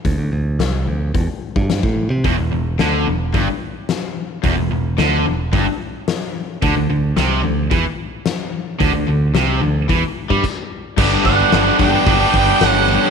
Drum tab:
CC |----------------|----------------|----------------|----------------|
HH |o---o---o---o---|o---o---o---o---|o---o---o---o---|o---o---o---o---|
SD |----o-------o---|----o-------o---|----o-------o---|----o-------o---|
BD |o-------o--o-o--|o-------o-------|o-------o-------|o-------o-------|

CC |------------x---|x-x-x-x-x-x-x-x-|
HH |o---o---o-------|----------------|
SD |----o-----------|----o-------o---|
BD |o-------o--oo---|o-o---o-o-o-----|